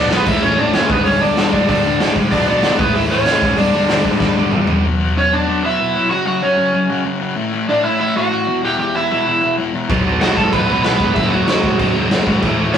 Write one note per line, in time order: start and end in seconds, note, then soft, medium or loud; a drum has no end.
0.00 0.11 B3 loud
0.00 0.11 D4 medium
0.00 0.13 D5 medium
0.11 0.25 B1 medium
0.11 0.26 B2 medium
0.11 0.26 F#3 medium
0.11 0.26 B3 loud
0.11 0.27 B3 medium
0.11 0.28 B4 medium
0.11 snare loud
0.11 open hi-hat medium
0.26 0.41 A1 medium
0.26 0.43 A2 medium
0.26 0.42 E3 loud
0.26 0.42 A3 loud
0.26 0.42 E4 medium
0.26 0.44 E5 loud
0.26 kick loud
0.26 crash loud
0.42 0.57 A1 medium
0.42 0.56 A2 loud
0.42 0.57 E3 loud
0.42 0.57 A3 loud
0.42 0.57 C#4 medium
0.42 0.59 C#5 medium
0.58 0.73 A1 medium
0.58 0.74 A2 medium
0.58 0.74 E3 loud
0.58 0.73 A3 loud
0.58 0.73 D4 medium
0.58 0.74 D5 medium
0.73 0.88 F#1 loud
0.73 0.89 A2 medium
0.73 0.89 E3 medium
0.73 0.89 A3 loud
0.73 0.89 C#4 medium
0.73 0.89 C#5 medium
0.73 snare loud
0.73 open hi-hat medium
0.90 1.04 G1 loud
0.90 1.05 G2 loud
0.90 1.04 D3 loud
0.90 1.04 G3 loud
0.90 1.05 B3 medium
0.90 1.04 B4 medium
0.90 kick loud
1.05 1.20 G1 loud
1.05 1.21 G2 medium
1.05 1.21 D3 medium
1.05 1.21 G3 medium
1.05 1.20 C#4 medium
1.05 1.21 C#5 loud
1.05 open hi-hat medium
1.21 1.36 G1 medium
1.21 1.37 G2 medium
1.21 1.36 D3 medium
1.21 1.36 G3 loud
1.21 1.51 D4 medium
1.21 1.51 D5 medium
1.37 1.52 G1 medium
1.37 1.51 G2 medium
1.37 1.52 D3 loud
1.37 1.52 G3 loud
1.37 snare loud
1.37 open hi-hat medium
1.52 1.67 G1 medium
1.52 1.69 G2 medium
1.52 1.68 D3 loud
1.52 1.68 G3 loud
1.52 1.68 D4 medium
1.52 1.68 D5 loud
1.52 kick medium
1.69 1.83 G1 medium
1.69 1.83 G2 medium
1.69 1.84 D3 loud
1.69 1.84 G3 loud
1.69 2.13 D4 medium
1.69 2.13 D5 medium
1.69 kick loud
1.69 open hi-hat medium
1.85 1.99 G1 loud
1.85 2.00 G2 medium
1.85 2.00 D3 loud
1.85 1.99 G3 medium
2.00 2.15 G1 loud
2.00 2.15 G2 medium
2.00 2.16 D3 loud
2.00 2.16 G3 loud
2.00 snare loud
2.00 open hi-hat medium
2.16 2.30 G1 loud
2.16 2.31 G2 medium
2.16 2.31 D3 loud
2.16 2.32 G3 loud
2.16 kick medium
2.32 2.61 B1 loud
2.32 2.48 B2 loud
2.32 2.48 F#3 loud
2.32 2.47 B3 loud
2.32 2.47 D4 medium
2.32 2.47 D5 loud
2.32 kick medium
2.32 open hi-hat medium
2.48 2.64 B2 medium
2.48 2.64 F#3 loud
2.48 2.65 B3 loud
2.48 2.78 D4 medium
2.48 2.77 D5 loud
2.62 2.77 G1 loud
2.62 2.79 B2 medium
2.62 2.79 F#3 loud
2.62 2.79 B3 loud
2.62 snare loud
2.62 open hi-hat medium
2.79 2.94 A1 medium
2.79 2.95 A2 medium
2.79 2.95 E3 loud
2.79 2.94 A3 loud
2.79 2.94 B3 medium
2.79 2.95 B4 medium
2.79 kick loud
2.95 3.09 A1 medium
2.95 3.10 A2 loud
2.95 3.11 E3 loud
2.95 3.11 A3 loud
2.95 3.02 E4 medium
2.95 3.00 E5 medium
2.95 open hi-hat medium
3.10 3.25 A1 medium
3.10 3.26 A2 medium
3.10 3.26 E3 loud
3.10 3.25 A3 loud
3.10 3.55 C#4 medium
3.10 3.58 C#5 medium
3.25 3.40 F#1 loud
3.25 3.41 A2 loud
3.25 3.41 E3 loud
3.25 3.41 A3 loud
3.25 snare loud
3.25 open hi-hat medium
3.42 3.56 G1 medium
3.42 3.57 G2 loud
3.42 3.57 D3 loud
3.42 3.57 G3 loud
3.42 kick loud
3.58 3.72 G1 loud
3.58 3.73 G2 medium
3.58 3.73 D3 loud
3.58 3.73 G3 loud
3.58 4.49 D4 medium
3.58 4.48 D5 medium
3.58 open hi-hat medium
3.73 3.88 G1 medium
3.73 3.89 G2 medium
3.73 3.89 D3 medium
3.73 3.89 G3 loud
3.89 4.04 G1 medium
3.89 4.04 G2 medium
3.89 4.04 D3 medium
3.89 4.05 G3 loud
3.89 snare loud
3.89 open hi-hat medium
4.05 4.19 G1 medium
4.05 4.20 G2 medium
4.05 4.20 D3 loud
4.05 4.19 G3 medium
4.05 kick medium
4.20 4.35 G1 loud
4.20 4.35 G2 medium
4.20 4.36 D3 loud
4.20 4.36 G3 loud
4.20 kick loud
4.20 snare medium
4.36 4.51 G1 medium
4.36 4.52 G2 medium
4.36 4.51 D3 medium
4.36 4.51 G3 loud
4.52 4.67 G1 loud
4.52 4.66 G2 medium
4.52 4.67 D3 medium
4.52 4.67 G3 loud
4.52 mid tom loud
4.67 4.83 G1 medium
4.67 4.83 G2 medium
4.67 4.83 D3 medium
4.67 4.83 G3 loud
4.67 floor tom medium
4.84 4.99 B2 medium
4.84 5.00 F#3 loud
4.84 4.98 B3 loud
5.00 5.15 B2 medium
5.00 5.16 F#3 loud
5.00 5.16 B3 loud
5.16 5.32 B2 medium
5.16 5.32 F#3 medium
5.16 5.31 B3 medium
5.16 5.31 C#4 medium
5.16 5.34 C#5 medium
5.32 5.46 B2 loud
5.32 5.47 F#3 loud
5.32 5.47 B3 loud
5.32 5.61 D4 medium
5.32 5.65 D5 medium
5.47 5.63 B2 medium
5.47 5.63 F#3 medium
5.47 5.62 B3 medium
5.63 5.78 B2 medium
5.63 5.79 F#3 loud
5.63 5.79 B3 loud
5.63 6.08 E4 medium
5.63 6.10 E5 medium
5.79 5.95 B2 medium
5.79 5.95 F#3 medium
5.79 5.94 B3 medium
5.95 6.10 B2 medium
5.95 6.10 F#3 medium
5.95 6.10 B3 medium
6.11 6.26 F#2 loud
6.11 6.26 C#3 loud
6.11 6.25 F#3 loud
6.11 6.25 F#4 loud
6.11 6.26 F#5 loud
6.26 6.41 F#2 medium
6.26 6.41 C#3 medium
6.26 6.42 F#3 loud
6.26 6.41 F#4 medium
6.26 6.43 F#5 medium
6.42 6.57 F#2 medium
6.42 6.57 C#3 medium
6.42 6.56 F#3 loud
6.42 7.02 C#4 medium
6.42 7.01 C#5 medium
6.57 6.72 F#2 medium
6.57 6.72 C#3 medium
6.57 6.73 F#3 loud
6.73 6.89 F#2 medium
6.73 6.89 C#3 medium
6.73 6.88 F#3 loud
6.89 7.04 F#2 loud
6.89 7.05 C#3 loud
6.89 7.05 F#3 loud
7.05 7.21 F#2 medium
7.05 7.20 C#3 medium
7.05 7.19 F#3 medium
7.20 7.36 F#2 medium
7.20 7.36 C#3 medium
7.20 7.35 F#3 loud
7.36 7.52 A2 loud
7.36 7.52 E3 loud
7.36 7.51 A3 loud
7.52 7.67 A2 medium
7.52 7.68 E3 medium
7.52 7.68 A3 loud
7.68 7.84 A2 medium
7.68 7.84 E3 medium
7.68 7.83 A3 loud
7.68 7.83 D4 medium
7.68 7.84 D5 medium
7.84 7.98 A2 medium
7.84 7.99 E3 medium
7.84 8.00 A3 loud
7.84 7.99 E4 medium
7.84 8.00 E5 medium
8.00 8.15 A2 loud
8.00 8.15 E3 medium
8.00 8.14 A3 medium
8.00 8.15 E4 medium
8.00 8.17 E5 loud
8.16 8.29 A2 loud
8.16 8.30 E3 medium
8.16 8.30 A3 loud
8.16 8.60 F#4 medium
8.16 8.65 F#5 medium
8.31 8.46 A2 medium
8.31 8.46 E3 loud
8.31 8.46 A3 medium
8.47 8.63 E2 loud
8.47 8.63 B2 loud
8.47 8.62 E3 loud
8.64 8.78 E2 loud
8.64 8.78 B2 loud
8.64 8.79 E3 loud
8.64 8.78 G4 loud
8.64 8.79 G5 loud
8.79 8.95 E2 medium
8.79 8.94 B2 loud
8.79 8.94 E3 loud
8.79 8.94 G4 medium
8.79 8.96 G5 loud
8.95 9.10 E2 medium
8.95 9.11 B2 medium
8.95 9.11 E3 medium
8.95 9.54 E4 medium
8.95 9.55 E5 medium
9.12 9.27 E2 medium
9.12 9.26 B2 loud
9.12 9.26 E3 loud
9.27 9.41 E2 medium
9.27 9.42 B2 medium
9.27 9.42 E3 loud
9.42 9.58 E2 medium
9.42 9.58 B2 loud
9.42 9.57 E3 loud
9.58 9.72 E2 medium
9.58 9.73 B2 medium
9.58 9.74 E3 medium
9.74 9.89 E2 medium
9.74 9.89 B2 medium
9.74 9.89 E3 medium
9.89 10.11 B1 loud
9.89 10.05 B2 loud
9.89 10.06 F#3 loud
9.89 10.04 B3 loud
9.89 kick loud
9.89 crash medium
10.06 10.21 B2 medium
10.06 10.22 F#3 loud
10.06 10.21 B3 loud
10.21 10.32 B1 loud
10.21 10.37 B2 medium
10.21 10.38 F#3 medium
10.21 10.37 B3 medium
10.21 10.36 F#4 medium
10.21 10.36 F#5 loud
10.21 snare loud
10.21 crash medium
10.37 10.48 B1 medium
10.37 10.53 B2 medium
10.37 10.53 F#3 loud
10.37 10.54 B3 loud
10.37 10.52 A4 medium
10.37 10.52 A5 medium
10.37 kick medium
10.53 10.64 A1 loud
10.53 10.68 B2 medium
10.53 10.68 F#3 medium
10.53 10.67 B3 loud
10.53 10.83 B4 medium
10.53 10.82 B5 loud
10.53 kick loud
10.53 crash medium
10.69 10.80 B1 medium
10.69 10.83 B2 medium
10.69 10.84 F#3 loud
10.69 10.85 B3 loud
10.83 10.96 B1 loud
10.83 11.00 B2 medium
10.83 11.00 F#3 loud
10.83 10.99 B3 medium
10.83 11.14 B4 medium
10.83 11.16 B5 loud
10.83 snare loud
10.83 crash medium
11.00 11.11 E1 loud
11.00 11.16 B2 medium
11.00 11.15 F#3 medium
11.00 11.15 B3 loud
11.00 kick medium
11.14 11.37 F#1 loud
11.14 11.31 F#2 medium
11.14 11.31 C#3 loud
11.14 11.30 F#3 loud
11.14 11.31 E4 medium
11.14 11.30 E5 loud
11.14 kick loud
11.14 crash medium
11.30 11.47 F#2 medium
11.30 11.47 C#3 loud
11.30 11.48 F#3 loud
11.30 11.47 F#4 medium
11.30 11.45 F#5 medium
11.46 11.59 F#1 loud
11.46 11.63 F#2 medium
11.46 11.63 C#3 medium
11.46 11.62 F#3 loud
11.46 11.92 F#4 medium
11.46 11.91 F#5 medium
11.46 snare loud
11.46 crash medium
11.63 11.74 F#1 medium
11.63 11.77 F#2 medium
11.63 11.78 C#3 loud
11.63 11.78 F#3 loud
11.63 kick medium
11.78 11.90 E1 medium
11.78 11.94 F#2 medium
11.78 11.93 C#3 loud
11.78 11.93 F#3 loud
11.78 kick loud
11.78 crash medium
11.94 12.06 F#1 loud
11.94 12.10 F#2 medium
11.94 12.10 C#3 loud
11.94 12.11 F#3 loud
12.11 12.22 F#1 loud
12.11 12.26 F#2 medium
12.11 12.26 C#3 loud
12.11 12.25 F#3 loud
12.11 snare loud
12.11 crash medium
12.27 12.37 G#1 loud
12.27 12.42 F#2 medium
12.27 12.42 C#3 medium
12.27 12.42 F#3 medium
12.27 kick medium
12.42 12.64 A1 loud
12.42 12.59 A2 medium
12.42 12.58 E3 loud
12.42 12.58 A3 loud
12.42 kick loud
12.42 crash medium
12.59 12.74 A2 medium
12.59 12.74 E3 medium
12.59 12.75 A3 loud
12.74 12.78 A2 medium
12.74 12.78 E3 loud
12.74 12.78 C#5 medium
12.74 snare loud
12.74 crash medium